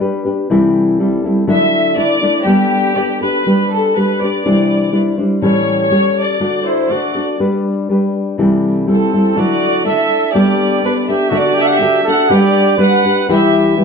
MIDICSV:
0, 0, Header, 1, 4, 480
1, 0, Start_track
1, 0, Key_signature, 1, "major"
1, 0, Tempo, 491803
1, 482, Time_signature, 2, 2, 24, 8
1, 13512, End_track
2, 0, Start_track
2, 0, Title_t, "Violin section"
2, 0, Program_c, 0, 48
2, 1476, Note_on_c, 0, 76, 87
2, 1904, Note_off_c, 0, 76, 0
2, 1930, Note_on_c, 0, 74, 84
2, 2371, Note_off_c, 0, 74, 0
2, 2407, Note_on_c, 0, 67, 76
2, 2875, Note_on_c, 0, 74, 58
2, 2989, Note_off_c, 0, 74, 0
2, 3136, Note_off_c, 0, 67, 0
2, 3140, Note_on_c, 0, 71, 70
2, 3585, Note_off_c, 0, 71, 0
2, 3625, Note_on_c, 0, 69, 70
2, 3853, Note_off_c, 0, 69, 0
2, 3874, Note_on_c, 0, 71, 66
2, 4109, Note_off_c, 0, 71, 0
2, 4121, Note_on_c, 0, 74, 58
2, 4819, Note_off_c, 0, 74, 0
2, 5319, Note_on_c, 0, 73, 75
2, 5641, Note_off_c, 0, 73, 0
2, 5678, Note_on_c, 0, 73, 94
2, 6004, Note_off_c, 0, 73, 0
2, 6045, Note_on_c, 0, 74, 77
2, 6507, Note_on_c, 0, 72, 63
2, 6510, Note_off_c, 0, 74, 0
2, 6735, Note_off_c, 0, 72, 0
2, 6746, Note_on_c, 0, 74, 59
2, 7104, Note_off_c, 0, 74, 0
2, 8685, Note_on_c, 0, 69, 64
2, 9118, Note_off_c, 0, 69, 0
2, 9148, Note_on_c, 0, 74, 88
2, 9613, Note_on_c, 0, 76, 85
2, 9621, Note_off_c, 0, 74, 0
2, 10059, Note_off_c, 0, 76, 0
2, 10101, Note_on_c, 0, 74, 75
2, 10586, Note_on_c, 0, 71, 54
2, 10695, Note_off_c, 0, 71, 0
2, 10809, Note_on_c, 0, 76, 66
2, 10825, Note_off_c, 0, 74, 0
2, 11031, Note_off_c, 0, 76, 0
2, 11054, Note_on_c, 0, 74, 85
2, 11302, Note_off_c, 0, 74, 0
2, 11314, Note_on_c, 0, 76, 96
2, 11373, Note_off_c, 0, 76, 0
2, 11376, Note_on_c, 0, 78, 77
2, 11438, Note_off_c, 0, 78, 0
2, 11453, Note_on_c, 0, 76, 99
2, 11790, Note_off_c, 0, 76, 0
2, 11796, Note_on_c, 0, 78, 74
2, 12004, Note_off_c, 0, 78, 0
2, 12031, Note_on_c, 0, 74, 90
2, 12498, Note_off_c, 0, 74, 0
2, 12510, Note_on_c, 0, 78, 81
2, 12944, Note_off_c, 0, 78, 0
2, 12992, Note_on_c, 0, 76, 84
2, 13424, Note_off_c, 0, 76, 0
2, 13512, End_track
3, 0, Start_track
3, 0, Title_t, "Trumpet"
3, 0, Program_c, 1, 56
3, 6490, Note_on_c, 1, 64, 55
3, 6746, Note_on_c, 1, 66, 45
3, 6760, Note_off_c, 1, 64, 0
3, 7104, Note_off_c, 1, 66, 0
3, 8677, Note_on_c, 1, 60, 50
3, 9156, Note_on_c, 1, 66, 71
3, 9170, Note_off_c, 1, 60, 0
3, 9616, Note_off_c, 1, 66, 0
3, 9622, Note_on_c, 1, 69, 69
3, 10078, Note_on_c, 1, 67, 59
3, 10092, Note_off_c, 1, 69, 0
3, 10565, Note_off_c, 1, 67, 0
3, 10583, Note_on_c, 1, 62, 42
3, 10692, Note_off_c, 1, 62, 0
3, 10818, Note_on_c, 1, 67, 58
3, 11026, Note_on_c, 1, 66, 64
3, 11041, Note_off_c, 1, 67, 0
3, 11266, Note_on_c, 1, 67, 73
3, 11281, Note_off_c, 1, 66, 0
3, 11340, Note_on_c, 1, 69, 66
3, 11355, Note_off_c, 1, 67, 0
3, 11407, Note_on_c, 1, 67, 82
3, 11422, Note_off_c, 1, 69, 0
3, 11742, Note_off_c, 1, 67, 0
3, 11748, Note_on_c, 1, 69, 77
3, 11997, Note_on_c, 1, 67, 74
3, 12012, Note_off_c, 1, 69, 0
3, 12469, Note_off_c, 1, 67, 0
3, 12474, Note_on_c, 1, 71, 79
3, 12925, Note_off_c, 1, 71, 0
3, 12978, Note_on_c, 1, 67, 59
3, 13417, Note_off_c, 1, 67, 0
3, 13512, End_track
4, 0, Start_track
4, 0, Title_t, "Nylon-string guitar"
4, 0, Program_c, 2, 24
4, 0, Note_on_c, 2, 55, 47
4, 1, Note_on_c, 2, 62, 61
4, 10, Note_on_c, 2, 67, 59
4, 10, Note_on_c, 2, 71, 58
4, 228, Note_off_c, 2, 71, 0
4, 236, Note_off_c, 2, 67, 0
4, 240, Note_on_c, 2, 71, 42
4, 245, Note_off_c, 2, 62, 0
4, 247, Note_off_c, 2, 55, 0
4, 248, Note_on_c, 2, 67, 40
4, 257, Note_on_c, 2, 62, 39
4, 477, Note_off_c, 2, 71, 0
4, 481, Note_off_c, 2, 67, 0
4, 484, Note_on_c, 2, 48, 59
4, 485, Note_off_c, 2, 62, 0
4, 489, Note_on_c, 2, 60, 78
4, 491, Note_on_c, 2, 52, 70
4, 493, Note_on_c, 2, 55, 75
4, 496, Note_on_c, 2, 64, 83
4, 499, Note_on_c, 2, 69, 62
4, 957, Note_off_c, 2, 55, 0
4, 963, Note_off_c, 2, 48, 0
4, 963, Note_off_c, 2, 60, 0
4, 966, Note_off_c, 2, 52, 0
4, 969, Note_off_c, 2, 64, 0
4, 969, Note_on_c, 2, 55, 59
4, 975, Note_on_c, 2, 60, 59
4, 980, Note_on_c, 2, 64, 59
4, 982, Note_off_c, 2, 69, 0
4, 986, Note_on_c, 2, 69, 63
4, 1197, Note_off_c, 2, 69, 0
4, 1209, Note_on_c, 2, 69, 46
4, 1210, Note_off_c, 2, 60, 0
4, 1212, Note_off_c, 2, 64, 0
4, 1213, Note_off_c, 2, 55, 0
4, 1221, Note_on_c, 2, 60, 40
4, 1224, Note_on_c, 2, 64, 49
4, 1233, Note_on_c, 2, 55, 37
4, 1430, Note_off_c, 2, 64, 0
4, 1435, Note_off_c, 2, 55, 0
4, 1437, Note_off_c, 2, 69, 0
4, 1438, Note_on_c, 2, 50, 61
4, 1438, Note_on_c, 2, 57, 60
4, 1441, Note_on_c, 2, 54, 64
4, 1442, Note_off_c, 2, 60, 0
4, 1442, Note_on_c, 2, 64, 67
4, 1446, Note_on_c, 2, 62, 65
4, 1449, Note_on_c, 2, 69, 70
4, 1907, Note_off_c, 2, 57, 0
4, 1915, Note_off_c, 2, 64, 0
4, 1919, Note_off_c, 2, 54, 0
4, 1919, Note_on_c, 2, 57, 48
4, 1920, Note_off_c, 2, 69, 0
4, 1924, Note_off_c, 2, 62, 0
4, 1927, Note_on_c, 2, 64, 57
4, 1928, Note_on_c, 2, 62, 51
4, 1932, Note_on_c, 2, 69, 54
4, 1956, Note_off_c, 2, 50, 0
4, 2153, Note_off_c, 2, 64, 0
4, 2158, Note_off_c, 2, 69, 0
4, 2159, Note_off_c, 2, 62, 0
4, 2164, Note_off_c, 2, 57, 0
4, 2165, Note_on_c, 2, 64, 42
4, 2169, Note_on_c, 2, 69, 38
4, 2171, Note_on_c, 2, 62, 41
4, 2176, Note_on_c, 2, 57, 37
4, 2396, Note_off_c, 2, 62, 0
4, 2398, Note_off_c, 2, 57, 0
4, 2398, Note_off_c, 2, 64, 0
4, 2398, Note_off_c, 2, 69, 0
4, 2398, Note_on_c, 2, 55, 64
4, 2402, Note_on_c, 2, 59, 60
4, 2405, Note_on_c, 2, 67, 59
4, 2408, Note_on_c, 2, 62, 61
4, 2410, Note_on_c, 2, 69, 68
4, 2876, Note_off_c, 2, 59, 0
4, 2883, Note_off_c, 2, 69, 0
4, 2885, Note_off_c, 2, 62, 0
4, 2888, Note_on_c, 2, 59, 38
4, 2888, Note_on_c, 2, 62, 41
4, 2892, Note_off_c, 2, 67, 0
4, 2894, Note_on_c, 2, 69, 51
4, 2896, Note_on_c, 2, 67, 51
4, 2924, Note_off_c, 2, 55, 0
4, 3122, Note_off_c, 2, 69, 0
4, 3132, Note_off_c, 2, 67, 0
4, 3133, Note_on_c, 2, 69, 40
4, 3135, Note_off_c, 2, 59, 0
4, 3135, Note_off_c, 2, 62, 0
4, 3144, Note_on_c, 2, 67, 37
4, 3152, Note_on_c, 2, 62, 34
4, 3366, Note_off_c, 2, 69, 0
4, 3370, Note_off_c, 2, 62, 0
4, 3372, Note_off_c, 2, 67, 0
4, 3381, Note_on_c, 2, 55, 57
4, 3382, Note_on_c, 2, 62, 54
4, 3387, Note_on_c, 2, 67, 65
4, 3387, Note_on_c, 2, 71, 64
4, 3855, Note_off_c, 2, 62, 0
4, 3858, Note_off_c, 2, 71, 0
4, 3861, Note_off_c, 2, 55, 0
4, 3864, Note_on_c, 2, 55, 41
4, 3868, Note_off_c, 2, 67, 0
4, 3869, Note_on_c, 2, 62, 49
4, 3872, Note_on_c, 2, 67, 50
4, 3881, Note_on_c, 2, 71, 57
4, 4102, Note_off_c, 2, 71, 0
4, 4104, Note_off_c, 2, 55, 0
4, 4106, Note_off_c, 2, 62, 0
4, 4107, Note_off_c, 2, 67, 0
4, 4113, Note_on_c, 2, 71, 37
4, 4128, Note_on_c, 2, 67, 34
4, 4137, Note_on_c, 2, 62, 32
4, 4336, Note_off_c, 2, 71, 0
4, 4339, Note_off_c, 2, 62, 0
4, 4344, Note_off_c, 2, 67, 0
4, 4348, Note_on_c, 2, 48, 57
4, 4348, Note_on_c, 2, 52, 55
4, 4351, Note_on_c, 2, 62, 70
4, 4351, Note_on_c, 2, 72, 73
4, 4353, Note_on_c, 2, 55, 63
4, 4354, Note_on_c, 2, 64, 66
4, 4789, Note_off_c, 2, 55, 0
4, 4796, Note_off_c, 2, 62, 0
4, 4801, Note_off_c, 2, 64, 0
4, 4801, Note_on_c, 2, 55, 44
4, 4804, Note_off_c, 2, 72, 0
4, 4808, Note_on_c, 2, 62, 49
4, 4813, Note_on_c, 2, 64, 58
4, 4816, Note_off_c, 2, 48, 0
4, 4816, Note_off_c, 2, 52, 0
4, 4816, Note_on_c, 2, 72, 55
4, 5042, Note_off_c, 2, 72, 0
4, 5048, Note_off_c, 2, 64, 0
4, 5050, Note_off_c, 2, 55, 0
4, 5054, Note_off_c, 2, 62, 0
4, 5054, Note_on_c, 2, 72, 47
4, 5059, Note_on_c, 2, 64, 36
4, 5064, Note_on_c, 2, 62, 38
4, 5070, Note_on_c, 2, 55, 36
4, 5280, Note_off_c, 2, 55, 0
4, 5285, Note_off_c, 2, 72, 0
4, 5288, Note_off_c, 2, 64, 0
4, 5289, Note_off_c, 2, 62, 0
4, 5289, Note_on_c, 2, 45, 70
4, 5292, Note_on_c, 2, 55, 68
4, 5292, Note_on_c, 2, 67, 61
4, 5293, Note_on_c, 2, 52, 61
4, 5293, Note_on_c, 2, 61, 70
4, 5301, Note_on_c, 2, 69, 67
4, 5749, Note_off_c, 2, 55, 0
4, 5760, Note_on_c, 2, 55, 41
4, 5761, Note_off_c, 2, 61, 0
4, 5762, Note_off_c, 2, 67, 0
4, 5767, Note_off_c, 2, 45, 0
4, 5769, Note_off_c, 2, 52, 0
4, 5770, Note_off_c, 2, 69, 0
4, 5773, Note_on_c, 2, 61, 49
4, 5774, Note_on_c, 2, 67, 52
4, 5782, Note_on_c, 2, 69, 51
4, 6244, Note_off_c, 2, 55, 0
4, 6244, Note_off_c, 2, 61, 0
4, 6246, Note_off_c, 2, 69, 0
4, 6247, Note_on_c, 2, 50, 56
4, 6248, Note_on_c, 2, 62, 67
4, 6250, Note_off_c, 2, 67, 0
4, 6252, Note_on_c, 2, 57, 57
4, 6257, Note_on_c, 2, 66, 71
4, 6257, Note_on_c, 2, 69, 69
4, 6722, Note_off_c, 2, 57, 0
4, 6729, Note_off_c, 2, 50, 0
4, 6730, Note_off_c, 2, 62, 0
4, 6733, Note_on_c, 2, 57, 54
4, 6734, Note_off_c, 2, 66, 0
4, 6734, Note_off_c, 2, 69, 0
4, 6745, Note_on_c, 2, 62, 49
4, 6746, Note_on_c, 2, 66, 47
4, 6752, Note_on_c, 2, 69, 50
4, 6964, Note_off_c, 2, 69, 0
4, 6975, Note_on_c, 2, 69, 37
4, 6979, Note_off_c, 2, 66, 0
4, 6981, Note_off_c, 2, 57, 0
4, 6983, Note_off_c, 2, 62, 0
4, 6991, Note_on_c, 2, 66, 27
4, 6994, Note_on_c, 2, 62, 27
4, 7210, Note_off_c, 2, 69, 0
4, 7211, Note_off_c, 2, 62, 0
4, 7218, Note_off_c, 2, 66, 0
4, 7221, Note_on_c, 2, 55, 63
4, 7223, Note_on_c, 2, 62, 69
4, 7223, Note_on_c, 2, 67, 62
4, 7223, Note_on_c, 2, 71, 75
4, 7692, Note_off_c, 2, 55, 0
4, 7699, Note_off_c, 2, 62, 0
4, 7699, Note_off_c, 2, 67, 0
4, 7699, Note_off_c, 2, 71, 0
4, 7703, Note_on_c, 2, 55, 44
4, 7716, Note_on_c, 2, 71, 55
4, 7718, Note_on_c, 2, 62, 47
4, 7720, Note_on_c, 2, 67, 62
4, 8171, Note_off_c, 2, 55, 0
4, 8177, Note_on_c, 2, 48, 66
4, 8183, Note_off_c, 2, 67, 0
4, 8183, Note_on_c, 2, 55, 75
4, 8185, Note_off_c, 2, 71, 0
4, 8186, Note_off_c, 2, 62, 0
4, 8187, Note_on_c, 2, 64, 72
4, 8188, Note_on_c, 2, 52, 66
4, 8191, Note_on_c, 2, 69, 77
4, 8192, Note_on_c, 2, 60, 68
4, 8646, Note_off_c, 2, 55, 0
4, 8648, Note_off_c, 2, 60, 0
4, 8648, Note_off_c, 2, 64, 0
4, 8656, Note_off_c, 2, 48, 0
4, 8658, Note_on_c, 2, 55, 48
4, 8659, Note_on_c, 2, 60, 41
4, 8660, Note_on_c, 2, 64, 42
4, 8661, Note_off_c, 2, 52, 0
4, 8668, Note_off_c, 2, 69, 0
4, 8672, Note_on_c, 2, 69, 55
4, 8898, Note_off_c, 2, 69, 0
4, 8904, Note_off_c, 2, 55, 0
4, 8905, Note_off_c, 2, 60, 0
4, 8905, Note_off_c, 2, 64, 0
4, 8910, Note_on_c, 2, 69, 43
4, 8921, Note_on_c, 2, 64, 36
4, 8922, Note_on_c, 2, 60, 31
4, 8924, Note_on_c, 2, 55, 30
4, 9135, Note_off_c, 2, 64, 0
4, 9138, Note_off_c, 2, 55, 0
4, 9138, Note_off_c, 2, 60, 0
4, 9139, Note_off_c, 2, 69, 0
4, 9142, Note_on_c, 2, 57, 58
4, 9142, Note_on_c, 2, 62, 67
4, 9143, Note_on_c, 2, 54, 62
4, 9145, Note_on_c, 2, 50, 53
4, 9147, Note_on_c, 2, 64, 58
4, 9151, Note_on_c, 2, 69, 63
4, 9610, Note_off_c, 2, 57, 0
4, 9612, Note_off_c, 2, 64, 0
4, 9614, Note_on_c, 2, 57, 42
4, 9616, Note_off_c, 2, 62, 0
4, 9618, Note_off_c, 2, 54, 0
4, 9620, Note_on_c, 2, 62, 42
4, 9624, Note_on_c, 2, 64, 45
4, 9630, Note_off_c, 2, 69, 0
4, 9633, Note_on_c, 2, 69, 48
4, 9653, Note_off_c, 2, 50, 0
4, 10093, Note_off_c, 2, 57, 0
4, 10096, Note_off_c, 2, 62, 0
4, 10096, Note_off_c, 2, 69, 0
4, 10098, Note_off_c, 2, 64, 0
4, 10098, Note_on_c, 2, 55, 59
4, 10100, Note_on_c, 2, 59, 63
4, 10100, Note_on_c, 2, 62, 69
4, 10105, Note_on_c, 2, 67, 61
4, 10108, Note_on_c, 2, 69, 72
4, 10562, Note_off_c, 2, 59, 0
4, 10574, Note_on_c, 2, 59, 49
4, 10575, Note_off_c, 2, 55, 0
4, 10579, Note_off_c, 2, 67, 0
4, 10580, Note_off_c, 2, 69, 0
4, 10584, Note_off_c, 2, 62, 0
4, 10588, Note_on_c, 2, 62, 47
4, 10593, Note_on_c, 2, 67, 47
4, 10595, Note_on_c, 2, 69, 52
4, 10806, Note_off_c, 2, 69, 0
4, 10815, Note_off_c, 2, 67, 0
4, 10818, Note_on_c, 2, 69, 51
4, 10821, Note_off_c, 2, 59, 0
4, 10821, Note_off_c, 2, 62, 0
4, 10827, Note_on_c, 2, 67, 37
4, 10832, Note_on_c, 2, 62, 32
4, 11035, Note_off_c, 2, 69, 0
4, 11036, Note_off_c, 2, 62, 0
4, 11040, Note_on_c, 2, 50, 72
4, 11045, Note_off_c, 2, 67, 0
4, 11045, Note_on_c, 2, 57, 63
4, 11047, Note_on_c, 2, 69, 88
4, 11048, Note_on_c, 2, 62, 82
4, 11049, Note_on_c, 2, 66, 74
4, 11509, Note_off_c, 2, 57, 0
4, 11515, Note_off_c, 2, 62, 0
4, 11518, Note_off_c, 2, 66, 0
4, 11521, Note_on_c, 2, 57, 52
4, 11526, Note_off_c, 2, 69, 0
4, 11527, Note_off_c, 2, 50, 0
4, 11527, Note_on_c, 2, 62, 56
4, 11530, Note_on_c, 2, 66, 61
4, 11537, Note_on_c, 2, 69, 67
4, 11774, Note_off_c, 2, 57, 0
4, 11777, Note_off_c, 2, 62, 0
4, 11777, Note_off_c, 2, 69, 0
4, 11779, Note_off_c, 2, 66, 0
4, 11788, Note_on_c, 2, 69, 47
4, 11792, Note_on_c, 2, 66, 40
4, 11805, Note_on_c, 2, 62, 38
4, 11998, Note_off_c, 2, 62, 0
4, 12002, Note_on_c, 2, 55, 66
4, 12006, Note_off_c, 2, 66, 0
4, 12006, Note_off_c, 2, 69, 0
4, 12010, Note_on_c, 2, 62, 79
4, 12010, Note_on_c, 2, 67, 82
4, 12010, Note_on_c, 2, 71, 73
4, 12457, Note_off_c, 2, 55, 0
4, 12468, Note_off_c, 2, 62, 0
4, 12469, Note_off_c, 2, 67, 0
4, 12469, Note_on_c, 2, 55, 52
4, 12476, Note_off_c, 2, 71, 0
4, 12480, Note_on_c, 2, 62, 60
4, 12481, Note_on_c, 2, 67, 62
4, 12488, Note_on_c, 2, 71, 59
4, 12720, Note_off_c, 2, 71, 0
4, 12725, Note_off_c, 2, 55, 0
4, 12730, Note_off_c, 2, 62, 0
4, 12731, Note_off_c, 2, 67, 0
4, 12731, Note_on_c, 2, 71, 49
4, 12742, Note_on_c, 2, 67, 43
4, 12745, Note_on_c, 2, 62, 36
4, 12959, Note_off_c, 2, 71, 0
4, 12963, Note_off_c, 2, 67, 0
4, 12968, Note_off_c, 2, 62, 0
4, 12969, Note_on_c, 2, 52, 67
4, 12971, Note_on_c, 2, 71, 80
4, 12972, Note_on_c, 2, 64, 77
4, 12973, Note_on_c, 2, 55, 70
4, 12974, Note_on_c, 2, 67, 83
4, 13429, Note_off_c, 2, 55, 0
4, 13437, Note_off_c, 2, 67, 0
4, 13440, Note_off_c, 2, 64, 0
4, 13440, Note_on_c, 2, 55, 50
4, 13444, Note_on_c, 2, 64, 70
4, 13446, Note_off_c, 2, 71, 0
4, 13449, Note_on_c, 2, 67, 55
4, 13457, Note_on_c, 2, 71, 54
4, 13512, Note_off_c, 2, 52, 0
4, 13512, Note_off_c, 2, 55, 0
4, 13512, Note_off_c, 2, 64, 0
4, 13512, Note_off_c, 2, 67, 0
4, 13512, Note_off_c, 2, 71, 0
4, 13512, End_track
0, 0, End_of_file